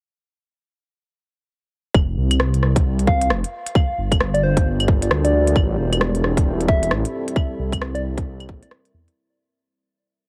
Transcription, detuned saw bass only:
1.95 F1
2.17 C2
2.85 C2
3.30 F1
3.98 G1
4.66 G1
5.11 D2
5.56 A1
5.78 E1
6.46 E1
6.91 A1
7.59 C2
8.27 C2
8.49 A#1
8.94 E2

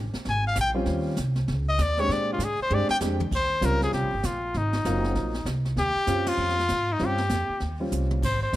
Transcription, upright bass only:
Already playing: A1
0.14 muted upright bass stroke
0.26 G#1
0.56 A#1
0.86 D#2
1.18 C2
1.48 C#2
1.78 D#2
2.09 A#2
2.38 G#2
2.59 muted upright bass stroke
2.71 G2
2.89 muted upright bass stroke
3.01 F2
3.31 D#2
3.61 C#2
3.92 C2
4.03 A#1
4.14 G1
4.24 A#1
4.55 G#1
4.85 F#1
5.16 A#1
5.45 C2
5.76 D#2
5.95 muted upright bass stroke
6.07 F#2
6.38 F2
6.70 G#2
7.00 G2
7.30 F2
7.49 muted upright bass stroke
7.61 D#2
7.92 C2
8.22 G#1
8.53 F1

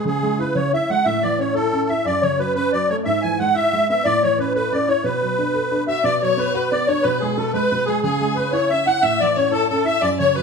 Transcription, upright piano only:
0.05 C#3
0.23 G#3
0.39 E4
0.55 C#3
0.73 E4
0.90 G#3
1.06 A2
1.23 E3
1.39 C#4
1.55 E4
1.73 C#4
1.89 E4
2.05 F#2
2.23 C#3
2.39 F#3
2.56 C#4
2.73 F#3
2.90 A3
3.06 G#2
3.24 E3
3.40 G#3
3.56 E4
3.73 G#3
3.90 B3
4.05 A2
4.23 E3
4.39 C#4
4.55 A4
4.73 C#4
4.88 E4
5.04 B2
5.22 F#3
5.38 D4
5.54 A4
5.72 D4
5.87 F#4
6.04 B2
6.22 F#3
6.37 B3
6.54 F#4
6.72 B3
6.88 D4
7.04 B2
7.22 G#3
7.38 B2
7.54 G#3
7.72 B2
7.88 G#3
8.03 C#3
8.21 G#3
8.37 C#4
8.53 E4
8.71 C#4
8.86 E4
9.03 A2
9.21 E3
9.37 C#4
9.52 E4
9.71 C#4
9.85 E4
10.02 F#2
10.20 C#3
10.36 F#3

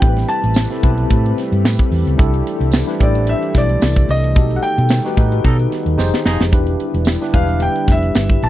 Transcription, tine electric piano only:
0.00 C4 E4 G4 A4
0.08 B4
0.70 C4 E4 G4 A4
0.83 C4 E4 G4 B4
2.17 D4 E4 G4 A4
2.86 D4 E4 G4 B4
3.00 D4 E4 G4 A4
4.35 D#4 F#4 G4 A4
5.05 D#4 F#4 G4 B4
5.17 D#4 G4 A4 B4
5.98 D#4 G4 G#4 C5
6.52 D4 E4 G4 B4
7.21 D4 E4 G4 B4
7.33 D4 E4 G4 B4

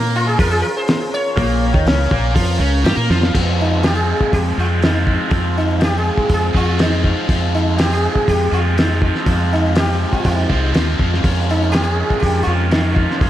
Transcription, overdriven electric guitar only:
Already playing: A#3 A#4
0.39 F3 F4
1.37 A#2 A#3
1.74 D#3 D#4
1.87 C#3 C#4
2.11 A#2 A#3
2.35 F3 F4
2.59 C#3 C#4
2.84 G3 G4
2.96 A#3 A#4
3.09 F3 F4
3.33 F3 G#3 C4 F4
3.82 F3 G#3 C4 F4
4.58 G#3 C4 F4
4.80 F3 G#3 C4 F4
5.05 G#3 C4 F4
5.29 F3 G#3 C4 F4
5.79 F3 G#3 C4 F4
6.53 G#3 C4 F4
6.78 F3 G#3 C4 F4
7.02 G#3 C4 F4
7.28 F3 G#3 C4 F4
7.77 F3 G#3 C4 F4
8.51 G#3 C4 F4
8.76 F3 G#3 C4 F4
9.02 G#3 C4 F4
9.26 F3 G#3 C4 F4
9.75 F3 G#3 C4 F4
10.49 G#3 C4 F4
10.73 F3 G#3 C4 F4
10.98 G#3 C4 F4
11.23 F3 G#3 C#4 F4
11.71 F3 G#3 C#4 F4
12.46 G#3 C#4 F4
12.71 F3 G#3 C#4 F4
12.95 G#3 C#4 F4
13.20 F3 G#3 C#4 F4

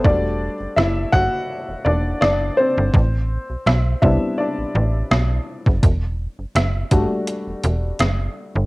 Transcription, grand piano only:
Already playing: A4 C5
0.04 G3 A3 D4 F#4 D5
0.76 E4 E5
1.12 F#4 F#5
1.85 D4 D5
2.21 D4 D5
2.57 C4 C5
4.02 G3 B3 C4 D4 E4 E5
4.38 D4 D5
6.91 G3 A3 D4 F#4

